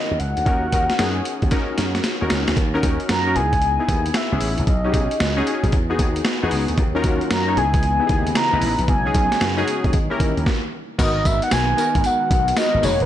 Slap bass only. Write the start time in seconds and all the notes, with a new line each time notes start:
0.11 D#2
0.20 C#2
0.37 D2
0.46 D#2
0.73 D#2
0.99 F#2
1.43 D#2
1.78 F#2
2.22 D#2
2.31 C#2
2.49 D2
2.57 D#2
2.83 D#2
3.10 F#2
3.36 C#2
3.89 D#2
4.32 C#2
4.42 A1
4.59 A#1
4.68 B1
4.94 B1
5.20 C#2
5.64 B1
5.73 E2
5.99 D#2
6.43 E2
6.52 C#2
6.69 D2
6.78 D#2
7.04 D#2
7.31 F#2
7.57 C#2
8.10 D#2
8.53 C#2
8.62 A1
8.79 A#1
8.88 B1
9.15 B1
9.41 F#2
9.85 D#2
9.94 D#3
10.20 D#3
10.37 D#2
10.99 G#1
11.26 G#1
11.52 B1
11.95 G#1
12.31 B1
12.74 G#1
12.84 E1
13.01 D#1